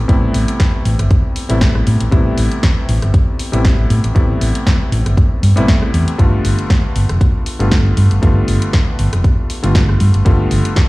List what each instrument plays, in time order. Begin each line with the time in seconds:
0.08 fingered electric bass A1, electric grand piano C3 G3 A3 B3 E4, kick, closed hi-hat
0.34 fingered electric bass A1, open hi-hat
0.48 closed hi-hat
0.60 kick, snare, closed hi-hat
0.85 fingered electric bass A1, open hi-hat
0.99 fingered electric bass G1, cross-stick, closed hi-hat
1.11 kick, closed hi-hat
1.36 open hi-hat
1.49 fingered electric bass A1, electric grand piano C3 G3 A3 B3 E4, closed hi-hat
1.61 kick, snare, closed hi-hat
1.75 cross-stick
1.87 fingered electric bass A2, open hi-hat
2.00 fingered electric bass A1, closed hi-hat
2.11 fingered electric bass A1, electric grand piano C3 G3 A3 B3 E4, kick, closed hi-hat
2.38 fingered electric bass A1, open hi-hat
2.52 closed hi-hat
2.63 kick, snare, closed hi-hat
2.89 fingered electric bass A1, open hi-hat
3.02 fingered electric bass G1, cross-stick, closed hi-hat
3.14 kick, closed hi-hat
3.39 open hi-hat
3.52 fingered electric bass A1, electric grand piano C3 G3 A3 B3 E4, closed hi-hat
3.65 kick, snare, closed hi-hat
3.90 fingered electric bass A2, open hi-hat
4.04 fingered electric bass A1, closed hi-hat
4.15 fingered electric bass A1, electric grand piano C3 G3 A3 B3 E4, kick, closed hi-hat
4.41 fingered electric bass A1, open hi-hat
4.55 closed hi-hat
4.67 kick, snare, closed hi-hat
4.92 fingered electric bass A1, open hi-hat
5.06 fingered electric bass G1, cross-stick, closed hi-hat
5.17 kick, closed hi-hat
5.43 fingered electric bass G2, open hi-hat
5.56 fingered electric bass A1, electric grand piano C3 G3 A3 B3 E4, closed hi-hat
5.68 kick, snare, closed hi-hat
5.82 cross-stick
5.94 fingered electric bass E2, open hi-hat
6.08 closed hi-hat
6.18 fingered electric bass G1, electric grand piano D3 G3 A3 B3 F4, kick, closed hi-hat
6.45 fingered electric bass G1, open hi-hat
6.59 closed hi-hat
6.70 kick, snare, closed hi-hat
6.96 fingered electric bass G1, open hi-hat
7.09 fingered electric bass F1, cross-stick, closed hi-hat
7.21 kick, closed hi-hat
7.46 open hi-hat
7.59 fingered electric bass G1, electric grand piano D3 G3 A3 B3 F4, closed hi-hat
7.71 kick, snare, closed hi-hat
7.97 fingered electric bass G2, open hi-hat
8.11 fingered electric bass G1, closed hi-hat
8.22 fingered electric bass G1, electric grand piano D3 G3 A3 B3 F4, kick, closed hi-hat
8.48 fingered electric bass G1, open hi-hat
8.62 closed hi-hat
8.73 kick, snare, closed hi-hat
8.99 fingered electric bass G1, open hi-hat
9.13 fingered electric bass F1, cross-stick, closed hi-hat
9.24 kick, closed hi-hat
9.50 open hi-hat
9.63 fingered electric bass G1, electric grand piano D3 G3 A3 B3 F4, closed hi-hat
9.75 kick, snare, closed hi-hat
9.89 cross-stick
10.00 fingered electric bass G2, open hi-hat
10.14 fingered electric bass G1, closed hi-hat
10.25 electric grand piano D3 G3 A3 B3 F4, kick, closed hi-hat
10.51 fingered electric bass G1, open hi-hat
10.65 closed hi-hat
10.76 kick, snare, closed hi-hat